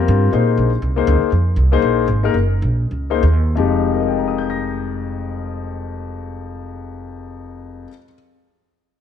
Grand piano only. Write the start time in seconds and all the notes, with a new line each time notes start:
Already playing: G3 C4 F4
0.00 A#4
0.32 A#3 D#4 G#4 C5
0.96 A#3 D#4 G#4 C5
1.72 A#3 D#4 G#4 C5
2.23 A#3 D#4 G#4 A#4
3.10 A#3 D#4 G#4 C5
3.55 F2 F3 G#3 D#4 G4
3.92 A#4
4.00 D#5
4.08 G5
4.18 A#5
4.28 D#6
4.38 G6
4.50 A#6